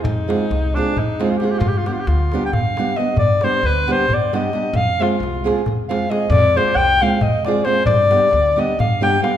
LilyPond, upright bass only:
\new Staff \with { instrumentName = "Upright bass" } { \clef bass \time 7/8 \tempo 4 = 134 f,4 c,4 f,4. | g,4 d,4 g,4. | g,4 d,4 g,4. | f,4 c,4 f,4. |
f,4 c,4 f,4. | g,4 d,4 g,4. | }